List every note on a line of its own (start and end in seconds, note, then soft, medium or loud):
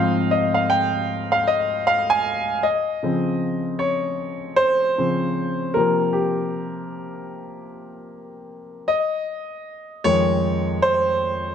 0.00 2.60 G#2 medium
0.00 2.60 F3 medium
0.00 2.61 C4 medium
0.00 0.31 D#5 medium
0.00 0.32 F5 medium
0.00 0.70 G5 medium
0.31 0.55 D#5 medium
0.54 0.70 F5 medium
0.70 1.33 G5 loud
1.32 1.48 F5 medium
1.47 1.56 D#5 loud
1.87 2.10 F5 loud
2.10 2.19 G#5 loud
2.63 3.84 D#5 medium
3.03 3.57 C#3 soft
3.03 3.58 F3 soft
3.03 3.58 C4 medium
3.79 4.60 C#5 medium
4.56 5.78 C5 loud
4.98 5.33 C#3 soft
4.98 5.33 F3 soft
4.98 5.33 C4 medium
5.74 6.30 C3 medium
5.74 6.31 F3 soft
5.74 6.31 A#3 medium
5.74 6.15 A#4 medium
6.13 7.66 G4 medium
8.88 10.08 D#5 medium
10.04 11.55 F2 medium
10.04 11.55 D#3 soft
10.04 11.55 G#3 medium
10.04 10.85 C#5 loud
10.82 11.55 C5 loud